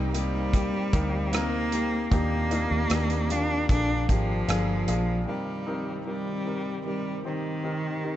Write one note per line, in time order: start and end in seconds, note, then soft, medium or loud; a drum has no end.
0.00 0.69 C2 medium
0.00 0.10 G2 medium
0.00 0.14 C3 medium
0.00 0.12 G3 medium
0.00 0.13 A#3 medium
0.00 0.14 C4 medium
0.00 3.66 C4 medium
0.00 0.14 D#4 medium
0.00 0.15 D#4 medium
0.00 0.15 G4 medium
0.00 0.95 A#4 loud
0.00 2.09 C5 medium
0.00 3.66 G5 medium
0.00 2.09 A#5 medium
0.13 0.34 G3 medium
0.13 1.36 G3 medium
0.13 0.51 A#3 medium
0.13 0.34 A#3 medium
0.13 0.52 C4 medium
0.13 0.52 D#4 medium
0.13 0.33 D#4 medium
0.13 0.52 G4 medium
0.13 0.32 G4 medium
0.13 closed hi-hat medium
0.34 0.74 A#3 soft
0.34 0.73 D#4 soft
0.34 0.72 G4 soft
0.53 0.91 A#3 medium
0.53 0.91 C4 medium
0.53 0.91 D#4 medium
0.53 0.92 G4 medium
0.53 kick medium
0.53 closed hi-hat medium
0.73 0.93 A#3 soft
0.73 0.93 D#4 medium
0.73 0.93 G4 medium
0.93 2.08 D2 medium
0.93 1.32 G3 soft
0.93 1.30 A#3 medium
0.93 1.32 A#3 soft
0.93 1.31 C4 medium
0.93 1.31 D#4 medium
0.93 1.32 D#4 medium
0.93 1.33 G4 medium
0.93 1.31 A#4 medium
0.93 kick medium
0.93 closed hi-hat medium
1.32 1.72 C3 medium
1.32 1.70 G3 medium
1.32 1.70 A#3 medium
1.32 1.71 A#3 medium
1.32 2.12 A#3 medium
1.32 1.70 C4 medium
1.32 1.70 D#4 medium
1.32 1.72 D#4 medium
1.32 1.73 G4 medium
1.32 1.71 A#4 loud
1.32 cross-stick loud
1.32 closed hi-hat medium
1.72 1.92 G3 medium
1.72 2.10 A#3 medium
1.72 1.92 A#3 medium
1.72 2.10 C4 medium
1.72 1.92 D#4 medium
1.72 2.10 D#4 medium
1.72 2.10 G4 medium
1.72 1.90 G4 medium
1.72 closed hi-hat medium
1.92 2.11 A#3 soft
1.92 2.12 D#4 soft
1.92 2.11 G4 soft
2.11 2.67 D#2 medium
2.11 3.26 A#2 medium
2.11 2.31 D#3 medium
2.11 2.32 G3 medium
2.11 2.49 A#3 medium
2.11 2.32 A#3 medium
2.11 3.33 A#3 loud
2.11 2.49 D4 medium
2.11 2.32 D4 medium
2.11 2.50 D#4 medium
2.11 2.30 G4 medium
2.11 2.50 G4 medium
2.11 5.24 D5 medium
2.11 5.24 A#5 medium
2.11 kick medium
2.11 closed hi-hat medium
2.32 2.51 A#3 soft
2.32 2.51 D4 soft
2.32 2.51 G4 soft
2.51 2.71 G3 medium
2.51 2.88 A#3 medium
2.51 2.71 A#3 medium
2.51 2.88 D4 medium
2.51 2.71 D4 medium
2.51 2.89 D#4 medium
2.51 2.89 F4 medium
2.51 2.70 G4 medium
2.51 closed hi-hat medium
2.71 2.89 D#2 medium
2.71 2.90 A#3 soft
2.71 2.90 D4 soft
2.71 2.91 G4 medium
2.90 3.65 D#2 medium
2.90 3.30 D#3 medium
2.90 3.29 G3 medium
2.90 3.27 A#3 medium
2.90 3.30 A#3 medium
2.90 3.28 D4 medium
2.90 3.30 D4 medium
2.90 3.28 D#4 medium
2.90 3.28 G4 medium
2.90 3.31 G4 medium
2.90 cross-stick loud
2.90 closed hi-hat medium
3.10 closed hi-hat soft
3.29 3.68 D#3 medium
3.29 3.50 G3 medium
3.29 3.67 A#3 medium
3.29 3.50 A#3 medium
3.29 3.67 D4 medium
3.29 3.70 D4 medium
3.29 3.50 D4 medium
3.29 3.68 F4 medium
3.29 3.49 G4 medium
3.29 closed hi-hat medium
3.50 3.70 A#3 soft
3.50 3.70 D4 soft
3.50 3.70 G4 soft
3.69 4.06 A#1 medium
3.69 3.89 A#2 medium
3.69 3.90 D3 medium
3.69 3.90 F3 medium
3.69 4.07 A#3 medium
3.69 3.89 A#3 medium
3.69 4.07 D4 medium
3.69 3.89 D4 medium
3.69 4.07 D4 medium
3.69 5.26 F4 medium
3.69 4.07 F4 medium
3.69 4.08 G#4 medium
3.69 3.88 G#4 medium
3.69 5.26 F5 medium
3.69 kick medium
3.69 closed hi-hat medium
3.89 4.08 F3 soft
3.89 4.09 A#3 soft
3.89 4.09 D4 soft
3.89 4.09 G#4 soft
4.08 4.46 G#1 medium
4.08 4.48 F3 soft
4.08 5.24 F3 medium
4.08 4.46 A#3 medium
4.08 4.48 A#3 medium
4.08 4.46 D4 medium
4.08 4.48 D4 medium
4.08 4.47 F4 medium
4.08 4.47 G4 medium
4.08 4.48 G#4 medium
4.08 kick medium
4.08 closed hi-hat medium
4.48 4.85 G1 medium
4.48 4.88 A#2 medium
4.48 4.88 D3 medium
4.48 4.86 F3 medium
4.48 4.85 A#3 medium
4.48 4.87 A#3 medium
4.48 4.86 D4 medium
4.48 4.88 D4 medium
4.48 4.86 F4 medium
4.48 4.86 G#4 medium
4.48 4.88 G#4 medium
4.48 cross-stick loud
4.48 closed hi-hat medium
4.87 5.25 A#1 medium
4.87 5.27 F3 medium
4.87 5.25 A#3 medium
4.87 5.28 A#3 medium
4.87 5.25 D4 medium
4.87 5.28 D4 medium
4.87 5.25 F4 medium
4.87 5.26 G#4 medium
4.87 5.28 G#4 medium
4.87 closed hi-hat medium
5.26 8.16 C2 soft
5.26 8.16 G2 soft
5.26 8.16 D#3 medium
5.26 6.02 G3 medium
5.26 5.64 C4 medium
5.26 8.16 C4 medium
5.26 5.65 D#4 medium
5.26 8.16 G4 medium
5.26 5.65 G4 medium
5.26 8.16 A#4 medium
5.26 5.65 A#4 medium
5.66 6.04 C4 medium
5.66 6.04 D#4 medium
5.66 6.05 G4 medium
5.66 6.05 A#4 medium
6.06 6.82 G3 medium
6.06 6.43 C4 medium
6.06 6.44 D#4 medium
6.06 6.44 G4 soft
6.06 6.44 A#4 medium
6.45 6.83 C4 medium
6.45 6.83 D#4 soft
6.45 6.83 G4 soft
6.45 6.84 A#4 medium
6.85 7.23 G3 medium
6.85 7.22 C4 soft
6.85 7.23 D#4 soft
6.85 7.23 G4 soft
6.85 7.23 A#4 medium
7.24 8.16 D#3 medium
7.24 7.62 C4 soft
7.24 7.62 D#4 soft
7.24 7.62 G4 soft
7.24 7.63 C5 medium
7.63 8.01 C4 medium
7.63 8.01 D#4 medium
7.63 8.02 G4 medium
7.63 8.02 A#4 medium
8.03 8.16 C4 medium
8.03 8.16 D#4 medium
8.03 8.16 G4 medium
8.03 8.16 A#4 medium